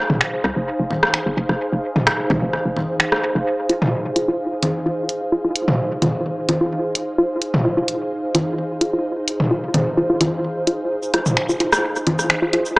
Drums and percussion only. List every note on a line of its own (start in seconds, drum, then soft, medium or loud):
0.10 mid tom medium
0.21 finger snap medium
0.44 cross-stick soft
0.91 high conga soft
1.03 cross-stick medium
1.14 finger snap medium
1.49 cross-stick soft
1.96 mid tom medium
2.07 finger snap medium
2.07 cross-stick medium
2.30 mid tom medium
2.30 high conga soft
2.53 cross-stick soft
2.77 high conga soft
3.00 finger snap medium
3.12 cross-stick medium
3.69 closed hi-hat medium
3.82 mid tom medium
4.16 closed hi-hat medium
4.63 closed hi-hat medium
4.63 high conga medium
5.09 closed hi-hat medium
5.56 closed hi-hat medium
5.68 mid tom medium
6.02 closed hi-hat medium
6.02 mid tom medium
6.02 high conga soft
6.49 closed hi-hat medium
6.49 high conga soft
6.95 closed hi-hat medium
7.42 closed hi-hat medium
7.54 mid tom medium
7.88 closed hi-hat medium
8.35 closed hi-hat medium
8.35 high conga medium
8.81 closed hi-hat medium
9.28 closed hi-hat medium
9.40 mid tom medium
9.74 closed hi-hat medium
9.74 mid tom medium
9.74 high conga soft
10.21 closed hi-hat medium
10.21 high conga medium
10.67 closed hi-hat medium
11.03 cabasa soft
11.14 cross-stick soft
11.14 closed hi-hat medium
11.26 mid tom medium
11.26 cabasa soft
11.37 finger snap medium
11.49 cabasa soft
11.60 closed hi-hat medium
11.72 cross-stick medium
11.72 cabasa soft
11.96 cabasa soft
12.07 closed hi-hat medium
12.07 high conga medium
12.19 cross-stick soft
12.19 cabasa soft
12.30 finger snap medium
12.53 closed hi-hat medium
12.66 cabasa medium